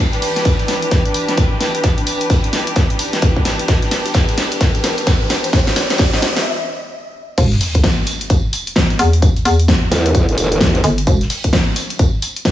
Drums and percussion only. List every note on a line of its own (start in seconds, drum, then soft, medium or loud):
0.13 snare soft
0.13 closed hi-hat soft
0.22 snare soft
0.22 open hi-hat medium
0.22 open hi-hat loud
0.36 snare soft
0.36 closed hi-hat medium
0.45 kick loud
0.45 snare loud
0.45 closed hi-hat medium
0.45 tambourine medium
0.59 closed hi-hat soft
0.68 snare medium
0.68 snare soft
0.68 open hi-hat medium
0.68 tambourine medium
0.82 closed hi-hat medium
0.91 kick loud
0.91 snare medium
0.91 closed hi-hat medium
0.91 tambourine medium
1.05 closed hi-hat soft
1.14 open hi-hat loud
1.14 tambourine medium
1.28 snare soft
1.28 closed hi-hat medium
1.37 kick loud
1.37 snare loud
1.37 closed hi-hat medium
1.37 tambourine medium
1.61 snare medium
1.61 open hi-hat medium
1.61 tambourine medium
1.75 closed hi-hat medium
1.84 kick loud
1.84 snare medium
1.84 closed hi-hat medium
1.84 tambourine medium
1.98 closed hi-hat soft
2.06 snare soft
2.06 open hi-hat loud
2.06 tambourine medium
2.21 closed hi-hat medium
2.30 kick loud
2.30 snare loud
2.30 closed hi-hat medium
2.30 tambourine medium
2.44 closed hi-hat soft
2.53 snare medium
2.53 open hi-hat loud
2.53 tambourine medium
2.67 closed hi-hat medium
2.76 kick loud
2.76 snare medium
2.76 closed hi-hat medium
2.76 tambourine medium
2.90 closed hi-hat soft
2.99 open hi-hat loud
2.99 tambourine medium
3.13 snare medium
3.13 closed hi-hat medium
3.22 kick loud
3.22 snare loud
3.22 closed hi-hat medium
3.22 tambourine medium
3.36 kick medium
3.45 snare medium
3.45 open hi-hat loud
3.45 tambourine medium
3.59 closed hi-hat medium
3.68 kick loud
3.68 snare medium
3.68 closed hi-hat medium
3.68 tambourine medium
3.82 snare soft
3.82 closed hi-hat soft
3.91 snare soft
3.91 snare medium
3.91 open hi-hat loud
3.91 open hi-hat medium
4.06 closed hi-hat medium
4.14 kick loud
4.14 snare loud
4.14 snare medium
4.14 closed hi-hat medium
4.14 tambourine medium
4.29 closed hi-hat soft
4.38 snare medium
4.38 snare soft
4.38 open hi-hat loud
4.38 tambourine medium
4.52 closed hi-hat medium
4.61 kick loud
4.61 snare medium
4.61 closed hi-hat medium
4.61 tambourine medium
4.75 closed hi-hat soft
4.84 snare medium
4.84 open hi-hat loud
4.84 tambourine medium
4.98 closed hi-hat soft
5.07 kick loud
5.07 snare medium
5.07 snare loud
5.07 closed hi-hat medium
5.07 tambourine medium
5.30 snare medium
5.30 open hi-hat loud
5.30 tambourine medium
5.44 closed hi-hat medium
5.53 kick loud
5.53 snare loud
5.53 closed hi-hat medium
5.53 tambourine medium
5.67 snare medium
5.67 closed hi-hat soft
5.76 snare medium
5.76 snare loud
5.76 open hi-hat loud
5.76 tambourine medium
5.90 snare medium
5.90 closed hi-hat medium
5.98 kick loud
5.98 snare loud
5.98 closed hi-hat medium
5.98 tambourine medium
6.13 snare medium
6.13 closed hi-hat soft
6.22 snare loud
6.22 open hi-hat loud
6.22 tambourine medium
6.37 snare medium
6.37 closed hi-hat medium
7.38 kick loud
7.38 closed hi-hat medium
7.38 crash loud
7.38 tambourine medium
7.52 snare medium
7.52 closed hi-hat soft
7.61 snare soft
7.61 open hi-hat loud
7.61 open hi-hat medium
7.75 kick medium
7.75 closed hi-hat medium
7.84 kick loud
7.84 snare loud
7.84 closed hi-hat medium
7.84 tambourine medium
8.06 open hi-hat loud
8.06 tambourine medium
8.21 closed hi-hat medium
8.30 kick loud
8.30 closed hi-hat medium
8.30 tambourine medium
8.53 open hi-hat loud
8.53 tambourine medium
8.67 closed hi-hat medium
8.76 kick loud
8.76 snare loud
8.76 closed hi-hat medium
8.76 tambourine medium
8.90 closed hi-hat soft
8.99 open hi-hat loud
8.99 tambourine medium
9.13 closed hi-hat medium
9.22 kick loud
9.22 closed hi-hat medium
9.22 tambourine medium
9.36 closed hi-hat soft
9.45 snare soft
9.45 open hi-hat loud
9.45 tambourine medium
9.60 closed hi-hat medium
9.68 kick loud
9.68 snare loud
9.68 closed hi-hat medium
9.68 tambourine medium
9.91 snare medium
9.91 open hi-hat loud
9.91 tambourine medium
10.06 closed hi-hat medium
10.15 kick loud
10.15 closed hi-hat medium
10.15 tambourine medium
10.29 closed hi-hat soft
10.38 open hi-hat loud
10.38 tambourine medium
10.52 closed hi-hat medium
10.61 kick loud
10.61 snare loud
10.61 closed hi-hat medium
10.61 tambourine loud
10.75 closed hi-hat soft
10.84 open hi-hat loud
10.84 tambourine medium
10.98 closed hi-hat medium
11.07 kick loud
11.07 closed hi-hat medium
11.07 tambourine loud
11.21 snare medium
11.21 closed hi-hat soft
11.30 snare soft
11.30 open hi-hat medium
11.30 open hi-hat loud
11.44 kick medium
11.44 closed hi-hat medium
11.53 kick loud
11.53 snare loud
11.53 closed hi-hat medium
11.53 tambourine medium
11.76 open hi-hat loud
11.76 tambourine medium
11.90 closed hi-hat medium
11.99 kick loud
11.99 closed hi-hat medium
11.99 tambourine medium
12.22 open hi-hat loud
12.22 tambourine medium
12.36 closed hi-hat medium
12.45 kick loud
12.45 snare loud
12.45 closed hi-hat medium
12.45 tambourine loud